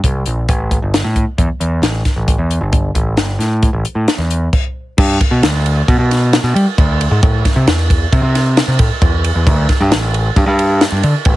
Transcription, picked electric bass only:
0.04 C2
0.26 A#1
0.49 A1
0.82 G1
1.04 A2
1.38 E2
1.60 E2
1.82 A1
2.16 A1
2.38 E2
2.61 G1
2.95 A1
3.17 G1
3.39 A2
3.73 A1
3.95 A2
4.18 E2
4.98 G2
5.31 B2
5.42 D2
5.88 B2
5.99 B2
6.44 B2
6.55 G3
6.78 D2
7.11 G#2
7.23 A2
7.56 C3
7.67 E2
8.12 C3
8.22 C3
8.68 C3
8.79 A2
9.02 E2
9.35 E2
9.47 D2
9.80 G2
9.91 A1
10.36 G2
10.46 G2
10.92 G2
11.04 D3
11.26 A1

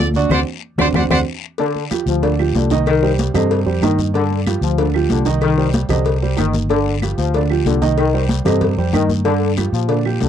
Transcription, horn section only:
0.15 F#4
0.31 C5 D5 F#5
0.80 C5 D5 F#5
0.96 C5 D5 F#5
1.11 C5 D5 F#5

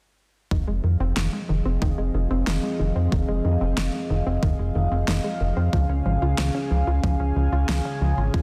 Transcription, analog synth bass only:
0.51 F1
0.68 F1
0.84 F2
1.00 F1
1.17 F1
1.49 F1
1.66 F1
1.82 F1
1.98 F1
2.14 F1
2.31 F1
2.47 F1
2.80 F1
2.96 F2
3.12 F1
3.29 F1
3.45 F2
3.61 F1
3.77 F1
4.10 F1
4.26 F1
4.43 F1
4.59 F1
4.75 F1
4.92 F1
5.08 F1
5.41 F1
5.57 F2
5.73 C#2
5.89 C#2
6.06 G#1
6.22 C#2
6.38 C#2
6.71 C#2
6.87 C#2
7.04 C#2
7.20 C#2
7.36 C#2
7.52 C#2
7.69 C#2
8.01 C#2
8.18 G#1
8.34 C#2

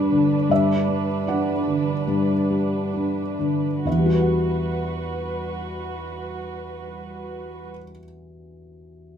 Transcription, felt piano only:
Already playing: G2 D3 G3 D4 D5
0.12 D3
0.49 G2 E5
0.88 G3
1.27 D4 F#5
1.67 D3
2.07 G2
2.50 G3
2.93 D4
3.39 D3
3.85 E2 E5
3.92 E3
3.99 G3
4.06 F#4
4.12 B4
4.20 F#5

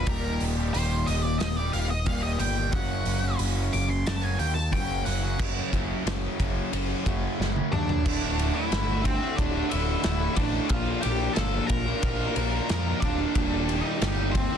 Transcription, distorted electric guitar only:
0.05 D#2 A#2 D#3 G3 G4
0.57 D#3 G3 G4
0.73 D#2 A#2 D#3 G3 G4
1.24 muted distorted electric guitar stroke
1.57 D#3 G3 G4
1.73 A#2 D#3 G3 G4
1.90 muted distorted electric guitar stroke
2.05 D#2 A#2 D#3 G3 G4
2.39 A#2 D#3 G3 G4
2.56 D#3 G3 G4
2.72 F#2 C#3 F#3 A#3 C#4 F#4
3.22 F#3 A#3 C#4 F#4
3.38 F#2 C#3 F#3 A#3 C#4 F#4
3.89 muted distorted electric guitar stroke
4.22 F#3 A#3 C#4 F#4
4.38 F#3 A#3 C#4 F#4
4.55 muted distorted electric guitar stroke
4.71 F#2 C#3 F#3 A#3 C#4 F#4
5.04 F#3 A#3 C#4 F#4
5.22 F#3 A#3 C#4 F#4
5.39 F#2 C#3 F#3
5.72 F#2 C#3 F#3
6.05 F#2 C#3 F#3
6.39 F#2 C#3 F#3
6.72 F#2 C#3 F#3
7.05 F#2 C#3 F#3
7.39 F#2 C#3 F#3
7.73 F#2 C#3 F#3
8.04 D2 A2 D3 A3 F#4
8.37 A2 D3 A3 F#4
8.70 D2 A2 D3 A3 F#4
8.86 D3 A3 F#4
9.03 muted distorted electric guitar stroke
9.21 D3 A3 F#4
9.37 A2 D3 A3 F#4
9.69 A2 D3 A3 F#4
10.02 D2 A2 D3 A3 F#4
10.20 D3 A3 F#4
10.36 A2 D3 A3 F#4
10.52 D3 A3 F#4
10.69 A#2 F3 A#3 D4 F4 A#4
11.02 A#3 D4 F4 A#4
11.36 A#2 F3 A#3 D4 F4 A#4
11.54 A#3 D4 F4 A#4
11.70 muted distorted electric guitar stroke
11.86 A#3 D4 F4 A#4
12.02 A#3 D4 F4 A#4
12.35 A#3 D4 F4 A#4
12.68 A#2 F3 A#3 D4 F4 A#4
12.86 A#3 D4 F4 A#4
13.03 A#3 D4 F4 A#4
13.19 A#3 D4 F4 A#4
13.36 D#2 A#2 D#3 G3 G4
13.69 A#2 D#3 G3 G4
14.01 D#2 A#2 D#3 G3 G4
14.17 D#3 G3 G4
14.36 muted distorted electric guitar stroke
14.51 D#3 G3 G4

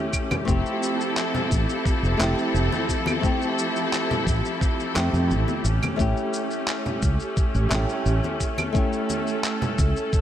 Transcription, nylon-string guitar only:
Already playing: A3 C#4 E4 G4
0.45 A3 C4 E4
0.50 G4
2.17 A3 C4 E4
2.22 G4
3.21 A3 C4 E4
3.26 G4
4.94 A3 C4 E4 G4
5.96 A3 C#4 E4
6.01 G4
7.69 A3 C#4 E4
7.74 G4
8.72 A3 C#4 E4
8.77 G4

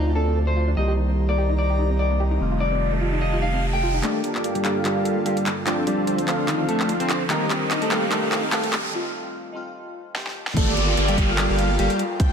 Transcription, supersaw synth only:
4.03 A#3 F4 G4 A4 D5
4.24 A#3 F4 G4 A4 D5
4.44 A#3 F4 G4 A4 D5
4.65 A#3 F4 G4 A4 F5
4.96 A#3 F4 G4 A4 F5
5.26 A#3 F4 G4 A4 F5
5.66 C4 D4 F4 A4 G5
5.87 C4 D4 F4 A4 D5
6.07 C4 D4 F4 A4 C5
6.28 C4 D4 F4 A4 F5
7.00 C4 D4 F4 A4 G5
7.30 C4 D#4 G4 A#4 D#5
7.50 C4 D#4 G4 A#4 D#5
7.71 C4 D#4 G4 A#4 D#5
7.91 C4 D#4 G4 A#4 F5
8.22 C4 D#4 G4 A#4 F5
8.52 C4 D#4 G4 A#4 F5
10.56 A#3 F4 G4 A4 D5
10.77 A#3 F4 G4 A4 D5
10.97 A#3 F4 G4 A4 D5
11.18 A#3 F4 G4 A4 F5
11.49 A#3 F4 G4 A4 F5
11.79 A#3 F4 G4 A4 F5
12.20 C4 D4 F4 A4 G5

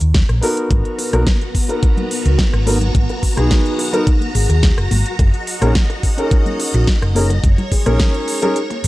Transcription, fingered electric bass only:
0.01 D#2
0.29 A#1
0.71 G#1
1.13 B1
2.25 C#2
2.53 G#1
2.95 G#1
3.37 B1
4.35 G#1
4.49 D#2
4.78 F#1
4.91 G#1
5.19 F#1
5.62 A#1
6.74 A#1
7.02 F#1
7.44 F#1
7.86 A#1
8.84 F#1

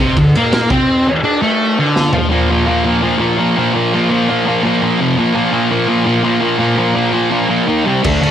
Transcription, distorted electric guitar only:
0.00 C3
0.18 D3
0.36 A#3
0.71 C4
1.06 muted distorted electric guitar stroke
1.24 D4
1.42 A3
1.79 D3
2.13 F3
2.30 A#2 F3 A#3
2.49 A#2 F3 A#3
2.66 A#2 F3 A#3
2.84 A#2 F3 A#3
3.03 A#2 F3 A#3
3.18 A#2 F3 A#3
3.38 A#2 F3 A#3
3.57 A#2 F3 A#3
3.74 A#2 F3 A#3
3.93 A#2 F3 A#3
4.09 A#2 F3 A#3
4.29 A#2 F3 A#3
4.46 A#2 F3 A#3
4.63 A#2 F3 A#3
4.82 A#2 F3 A#3
4.99 F2 C3 F3
5.18 A#2 F3 A#3
5.34 A#2 F3 A#3
5.52 A#2 F3 A#3
5.71 A#2 F3 A#3
5.87 A#2 F3 A#3
6.05 A#2 F3 A#3
6.23 A#2 F3 A#3
6.41 A#2 F3 A#3
6.59 A#2 F3 A#3
6.77 A#2 F3 A#3
6.95 A#2 F3 A#3
7.12 A#2 F3 A#3
7.31 A#2 F3 A#3
7.49 A#2 F3 A#3
7.68 D#3 A#3 D#4
7.86 C3 G3 C4
8.03 D3 A3 D4
8.22 D3 A3 D4

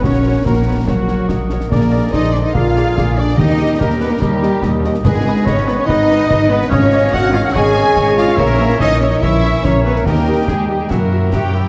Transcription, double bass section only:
0.04 A#1
0.45 A#1
0.87 A#1
1.30 A#1
1.72 A#1
2.14 A#1
2.54 A#1
2.97 A#1
3.38 D#2
3.78 D#2
4.19 D#2
4.61 D#2
5.04 G#1
5.46 G#1
5.88 G#1
6.30 G#1
6.71 G#1
7.14 G#1
7.55 G#1
7.96 G#1
8.39 A#1
8.80 A#1
9.21 A#1
9.62 A#1
10.05 D#2
10.47 D#2
10.88 F#2
11.33 F#2

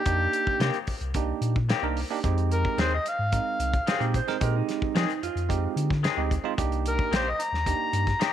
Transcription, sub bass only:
0.06 F2
0.60 C3
0.87 C2
1.01 C2
1.41 A#2
1.82 C2
2.24 F2
2.78 D#2
3.19 G#2
3.59 C2
4.00 A#2
4.41 A#2
4.95 F3
5.23 F2
5.35 F2
5.76 D3
6.17 D2
6.58 C2
7.11 A#1
7.52 D#2
7.93 G2

